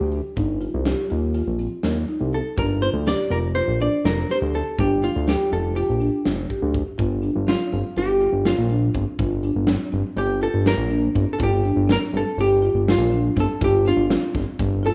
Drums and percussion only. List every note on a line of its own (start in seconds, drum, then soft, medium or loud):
0.12 closed hi-hat medium
0.37 kick medium
0.37 closed hi-hat medium
0.61 closed hi-hat medium
0.85 snare medium
0.85 closed hi-hat medium
1.10 closed hi-hat medium
1.34 closed hi-hat medium
1.59 closed hi-hat medium
1.83 snare medium
1.83 closed hi-hat medium
2.08 closed hi-hat medium
2.33 closed hi-hat medium
2.58 kick medium
2.58 closed hi-hat medium
2.82 closed hi-hat medium
3.07 snare medium
3.07 closed hi-hat medium
3.32 closed hi-hat soft
3.56 closed hi-hat medium
3.80 closed hi-hat soft
4.05 snare medium
4.05 closed hi-hat medium
4.30 snare soft
4.30 closed hi-hat soft
4.54 closed hi-hat medium
4.79 kick loud
4.79 closed hi-hat medium
5.03 closed hi-hat medium
5.28 snare medium
5.28 closed hi-hat medium
5.52 closed hi-hat medium
5.77 closed hi-hat medium
6.01 closed hi-hat medium
6.25 snare medium
6.25 closed hi-hat medium
6.50 kick medium
6.50 closed hi-hat medium
6.74 kick medium
6.74 closed hi-hat medium
6.99 kick medium
6.99 closed hi-hat medium
7.23 closed hi-hat medium
7.48 snare loud
7.48 closed hi-hat medium
7.73 closed hi-hat medium
7.96 closed hi-hat medium
8.21 closed hi-hat medium
8.45 snare medium
8.45 closed hi-hat medium
8.70 closed hi-hat medium
8.94 kick medium
8.94 closed hi-hat medium
9.19 kick loud
9.19 closed hi-hat medium
9.43 closed hi-hat medium
9.67 snare loud
9.67 closed hi-hat medium
9.92 closed hi-hat medium
10.17 closed hi-hat medium
10.41 closed hi-hat medium
10.66 snare medium
10.66 closed hi-hat medium
10.91 closed hi-hat medium
11.15 kick medium
11.15 closed hi-hat medium
11.40 kick loud
11.40 closed hi-hat medium
11.65 closed hi-hat medium
11.89 snare loud
11.89 closed hi-hat medium
12.14 closed hi-hat medium
12.39 closed hi-hat medium
12.63 closed hi-hat medium
12.88 snare loud
12.88 closed hi-hat medium
13.13 closed hi-hat medium
13.37 kick medium
13.37 snare soft
13.37 closed hi-hat medium
13.61 kick medium
13.61 closed hi-hat medium
13.86 closed hi-hat medium
14.10 snare loud
14.10 closed hi-hat medium
14.35 kick medium
14.35 snare soft
14.35 closed hi-hat medium
14.59 kick medium
14.59 closed hi-hat medium
14.85 closed hi-hat medium